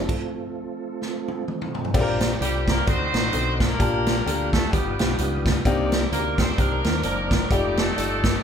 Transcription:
Already playing: tonewheel organ F4 A4
0.09 tonewheel organ F3 A3 C4, kick, crash
1.02 snare
1.28 high tom
1.48 mid tom
1.62 mid tom
1.75 floor tom
1.85 floor tom
1.94 fingered electric bass A#1, grand piano A#2 C4 D4 F4 G4 A4, tonewheel organ G4 C5 D5 G5, kick, crash
2.01 grand piano A#4
2.20 snare, closed hi-hat
2.40 fingered electric bass C2, horn section G3 G4, grand piano C4 D4 F4 G4 A4, closed hi-hat
2.68 horn section A#3 A#4, kick, snare, closed hi-hat
2.86 fingered electric bass D2, grand piano D3 C4 D4 D#4 F#4 A4, horn section C4 D#4 F#4 C5, tonewheel organ D#5 F#5 D6, kick, closed hi-hat
3.13 fingered electric bass A1, grand piano C4 D4 D#4 F#4 C5, snare, closed hi-hat
3.32 fingered electric bass B1, grand piano D3 C4 D#4 F#4 A4, closed hi-hat
3.60 horn section A#3 D4 F4 A#4, kick, snare, closed hi-hat
3.79 fingered electric bass A#1, grand piano A#2 A#3 D4 F4 G4 A5, tonewheel organ G4 F5 G5, kick, closed hi-hat
4.06 snare, closed hi-hat
4.25 fingered electric bass D2, grand piano A#3 D4 F4 G4 A4, closed hi-hat
4.52 horn section A3 A4, kick, snare, closed hi-hat
4.71 fingered electric bass G1, grand piano G2 B3 D4 D#4 F4 G4, horn section G3 B3 D4 G4, tonewheel organ B4 F5 D#6, kick, closed hi-hat
4.99 fingered electric bass B1, grand piano B3 D4 D#4 F4 G4, snare, closed hi-hat
5.18 fingered electric bass C#2, grand piano D#3 B3 D4 F4 G4, closed hi-hat
5.46 kick, snare, closed hi-hat
5.65 fingered electric bass C2, grand piano C3 A#3 C4 D4 D#4 G4, tonewheel organ A#4 C5 D5 D6, kick, closed hi-hat
5.92 snare, closed hi-hat
6.11 fingered electric bass D2, grand piano A#3 C4 D4 D#4 F#4, horn section A#3 A#4, closed hi-hat
6.18 grand piano G4
6.38 horn section C4 C5, kick, snare, closed hi-hat
6.58 fingered electric bass C2, grand piano A#3 C4 D4 D#4 G4, horn section A#3 D4 D#4 A#4, kick, closed hi-hat
6.84 fingered electric bass D#2, grand piano A#3 C4 D4 D#4 A#4, snare, closed hi-hat
7.03 fingered electric bass F#1, grand piano D#3 A#3 C4 D5 A5, horn section A#3 D4 D#4 A#4, closed hi-hat
7.31 kick, snare, closed hi-hat
7.50 fingered electric bass F1, horn section G3 C4 D#4 G4, grand piano A3 D#4 F4 G4 D5, tonewheel organ A4 G5 D6, kick, closed hi-hat
7.77 horn section A3 C4 D#4 A4, snare, closed hi-hat
7.96 fingered electric bass G1, grand piano A3 D#4 F4 G4 D5, closed hi-hat
8.24 kick, snare, closed hi-hat

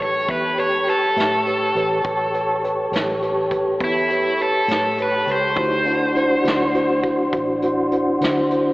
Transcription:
Already playing: fingered electric bass A1, tonewheel organ G4 A4 C#5
0.00 tine electric piano G4 B4 C#5, overdriven electric guitar C#5
0.28 fingered electric bass E2, tine electric piano G4 B4 E5, overdriven electric guitar B4, kick, closed hi-hat
0.57 tine electric piano G4 B4 C#5, overdriven electric guitar C#5, closed hi-hat
0.87 tine electric piano G4 B4 C#5, overdriven electric guitar A4, closed hi-hat
1.16 fingered electric bass A2, tine electric piano G4 B4 E5, snare, closed hi-hat
1.47 tine electric piano G4 B4 C#5, closed hi-hat
1.75 fingered electric bass A1, tine electric piano G4 B4 C#5, closed hi-hat
2.04 fingered electric bass A1, tonewheel organ G4 A4 C#5, tine electric piano G4 B4 C#5, kick, closed hi-hat
2.34 tine electric piano G4 B4 C#5, closed hi-hat
2.63 tine electric piano G4 B4 C#5, closed hi-hat
2.92 fingered electric bass A1, tine electric piano G4 B4 C#5, snare, closed hi-hat
3.22 tine electric piano G4 B4 C#5, closed hi-hat
3.51 tine electric piano G4 B4 C#5, kick, closed hi-hat
3.80 fingered electric bass E2, overdriven electric guitar E4, tine electric piano G4 B4 C#5, kick, closed hi-hat
4.10 tine electric piano G4 B4 C#5, closed hi-hat
4.39 tine electric piano G4 B4 C#5, overdriven electric guitar A4, closed hi-hat
4.68 fingered electric bass A2, tine electric piano G4 B4 C#5, snare, closed hi-hat
4.98 tine electric piano G4 B4 C#5, closed hi-hat
5.02 overdriven electric guitar B4
5.27 fingered electric bass C#2, tine electric piano G4 B4 C#5, closed hi-hat
5.32 overdriven electric guitar C5
5.55 fingered electric bass D2, tonewheel organ D#4 G4 C#5, tine electric piano E4 F#4 C5, kick, closed hi-hat
5.86 tonewheel organ D4 F#4 C5, tine electric piano E4 F#4 C5, closed hi-hat
6.15 tine electric piano E4 F#4 C5, closed hi-hat
6.44 fingered electric bass D2, tine electric piano E4 F#4 C5, snare, closed hi-hat
6.74 tine electric piano E4 F#4 C5, closed hi-hat
7.03 tine electric piano E4 F#4 C5, kick, closed hi-hat
7.33 fingered electric bass A1, tine electric piano E4 F#4 C5, kick, closed hi-hat
7.62 tine electric piano E4 F#4 C5, closed hi-hat
7.92 tine electric piano E4 F#4 C5, closed hi-hat
8.21 fingered electric bass D3, tine electric piano E4 F#4 C5, snare, closed hi-hat
8.50 tine electric piano E4 F#4 C5, closed hi-hat

